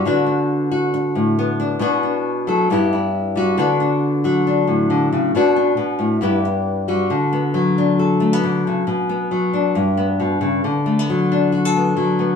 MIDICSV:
0, 0, Header, 1, 3, 480
1, 0, Start_track
1, 0, Key_signature, 2, "major"
1, 0, Tempo, 441826
1, 41, Time_signature, 4, 2, 24, 8
1, 13425, End_track
2, 0, Start_track
2, 0, Title_t, "Nylon-string guitar"
2, 0, Program_c, 0, 24
2, 59, Note_on_c, 0, 50, 67
2, 68, Note_on_c, 0, 59, 57
2, 71, Note_on_c, 0, 62, 51
2, 80, Note_on_c, 0, 66, 67
2, 283, Note_off_c, 0, 62, 0
2, 288, Note_on_c, 0, 62, 52
2, 764, Note_off_c, 0, 66, 0
2, 777, Note_on_c, 0, 66, 56
2, 1014, Note_off_c, 0, 62, 0
2, 1253, Note_on_c, 0, 45, 60
2, 1502, Note_off_c, 0, 59, 0
2, 1507, Note_on_c, 0, 59, 65
2, 1735, Note_on_c, 0, 62, 61
2, 1942, Note_off_c, 0, 45, 0
2, 1945, Note_off_c, 0, 50, 0
2, 1949, Note_on_c, 0, 47, 71
2, 1956, Note_off_c, 0, 59, 0
2, 1960, Note_on_c, 0, 59, 54
2, 1964, Note_off_c, 0, 66, 0
2, 1965, Note_off_c, 0, 62, 0
2, 1970, Note_on_c, 0, 62, 53
2, 1977, Note_on_c, 0, 66, 68
2, 2203, Note_off_c, 0, 62, 0
2, 2207, Note_on_c, 0, 62, 57
2, 2685, Note_on_c, 0, 54, 65
2, 2690, Note_off_c, 0, 66, 0
2, 2699, Note_on_c, 0, 69, 60
2, 2898, Note_off_c, 0, 54, 0
2, 2905, Note_off_c, 0, 69, 0
2, 2916, Note_off_c, 0, 47, 0
2, 2935, Note_on_c, 0, 43, 73
2, 2938, Note_off_c, 0, 59, 0
2, 2942, Note_on_c, 0, 59, 56
2, 2950, Note_off_c, 0, 62, 0
2, 2954, Note_on_c, 0, 64, 57
2, 2961, Note_on_c, 0, 67, 62
2, 3167, Note_off_c, 0, 64, 0
2, 3180, Note_on_c, 0, 64, 57
2, 3645, Note_on_c, 0, 55, 64
2, 3659, Note_off_c, 0, 67, 0
2, 3663, Note_on_c, 0, 66, 61
2, 3857, Note_off_c, 0, 55, 0
2, 3862, Note_off_c, 0, 43, 0
2, 3864, Note_off_c, 0, 64, 0
2, 3883, Note_off_c, 0, 59, 0
2, 3883, Note_on_c, 0, 50, 74
2, 3888, Note_on_c, 0, 59, 63
2, 3892, Note_off_c, 0, 66, 0
2, 3901, Note_on_c, 0, 62, 59
2, 3907, Note_on_c, 0, 66, 63
2, 4125, Note_off_c, 0, 62, 0
2, 4130, Note_on_c, 0, 62, 60
2, 4603, Note_off_c, 0, 66, 0
2, 4607, Note_on_c, 0, 54, 62
2, 4616, Note_on_c, 0, 66, 57
2, 4851, Note_off_c, 0, 62, 0
2, 4855, Note_on_c, 0, 62, 57
2, 5078, Note_on_c, 0, 45, 57
2, 5310, Note_off_c, 0, 50, 0
2, 5323, Note_on_c, 0, 50, 65
2, 5560, Note_off_c, 0, 50, 0
2, 5568, Note_on_c, 0, 49, 66
2, 5771, Note_off_c, 0, 45, 0
2, 5776, Note_off_c, 0, 54, 0
2, 5803, Note_off_c, 0, 49, 0
2, 5806, Note_off_c, 0, 66, 0
2, 5809, Note_on_c, 0, 47, 65
2, 5810, Note_off_c, 0, 59, 0
2, 5814, Note_on_c, 0, 59, 56
2, 5819, Note_off_c, 0, 62, 0
2, 5823, Note_on_c, 0, 62, 62
2, 5833, Note_on_c, 0, 66, 67
2, 6031, Note_off_c, 0, 62, 0
2, 6044, Note_on_c, 0, 62, 59
2, 6256, Note_off_c, 0, 47, 0
2, 6269, Note_on_c, 0, 47, 67
2, 6504, Note_on_c, 0, 45, 65
2, 6512, Note_off_c, 0, 47, 0
2, 6733, Note_off_c, 0, 62, 0
2, 6738, Note_off_c, 0, 59, 0
2, 6741, Note_off_c, 0, 45, 0
2, 6746, Note_on_c, 0, 43, 64
2, 6755, Note_on_c, 0, 59, 58
2, 6763, Note_on_c, 0, 64, 54
2, 6767, Note_off_c, 0, 66, 0
2, 6771, Note_on_c, 0, 67, 60
2, 6994, Note_off_c, 0, 64, 0
2, 7473, Note_on_c, 0, 55, 57
2, 7475, Note_off_c, 0, 67, 0
2, 7479, Note_on_c, 0, 66, 60
2, 7683, Note_off_c, 0, 43, 0
2, 7688, Note_off_c, 0, 55, 0
2, 7688, Note_off_c, 0, 59, 0
2, 7715, Note_on_c, 0, 50, 66
2, 7959, Note_on_c, 0, 59, 55
2, 8192, Note_on_c, 0, 54, 65
2, 8452, Note_on_c, 0, 62, 57
2, 8679, Note_off_c, 0, 66, 0
2, 8683, Note_on_c, 0, 69, 53
2, 8906, Note_off_c, 0, 59, 0
2, 8911, Note_on_c, 0, 57, 54
2, 9048, Note_off_c, 0, 57, 0
2, 9048, Note_on_c, 0, 59, 47
2, 9150, Note_off_c, 0, 50, 0
2, 9163, Note_on_c, 0, 50, 67
2, 9398, Note_off_c, 0, 50, 0
2, 9420, Note_on_c, 0, 49, 62
2, 9606, Note_off_c, 0, 54, 0
2, 9612, Note_off_c, 0, 69, 0
2, 9631, Note_off_c, 0, 49, 0
2, 9635, Note_off_c, 0, 59, 0
2, 9636, Note_on_c, 0, 47, 67
2, 9879, Note_on_c, 0, 59, 61
2, 10116, Note_on_c, 0, 54, 61
2, 10354, Note_off_c, 0, 62, 0
2, 10359, Note_on_c, 0, 62, 59
2, 10569, Note_off_c, 0, 54, 0
2, 10595, Note_off_c, 0, 47, 0
2, 10595, Note_on_c, 0, 43, 70
2, 10831, Note_off_c, 0, 59, 0
2, 10835, Note_on_c, 0, 59, 57
2, 11077, Note_on_c, 0, 47, 63
2, 11303, Note_off_c, 0, 47, 0
2, 11308, Note_on_c, 0, 49, 66
2, 11340, Note_off_c, 0, 62, 0
2, 11529, Note_off_c, 0, 43, 0
2, 11551, Note_off_c, 0, 49, 0
2, 11561, Note_on_c, 0, 50, 65
2, 11793, Note_off_c, 0, 59, 0
2, 11798, Note_on_c, 0, 57, 55
2, 11939, Note_off_c, 0, 57, 0
2, 11939, Note_on_c, 0, 59, 47
2, 12055, Note_on_c, 0, 54, 62
2, 12294, Note_on_c, 0, 62, 58
2, 12520, Note_on_c, 0, 66, 57
2, 12659, Note_off_c, 0, 66, 0
2, 12659, Note_on_c, 0, 69, 46
2, 12762, Note_off_c, 0, 59, 0
2, 12780, Note_on_c, 0, 59, 54
2, 12987, Note_off_c, 0, 54, 0
2, 13000, Note_on_c, 0, 54, 66
2, 13238, Note_off_c, 0, 59, 0
2, 13243, Note_on_c, 0, 59, 53
2, 13425, Note_off_c, 0, 50, 0
2, 13425, Note_off_c, 0, 54, 0
2, 13425, Note_off_c, 0, 59, 0
2, 13425, Note_off_c, 0, 62, 0
2, 13425, Note_off_c, 0, 69, 0
2, 13425, End_track
3, 0, Start_track
3, 0, Title_t, "Muted nylon-string guitar strokes"
3, 1019, Note_on_c, 9, 29, 55
3, 1127, Note_off_c, 9, 29, 0
3, 7007, Note_on_c, 9, 29, 49
3, 7116, Note_off_c, 9, 29, 0
3, 13425, End_track
0, 0, End_of_file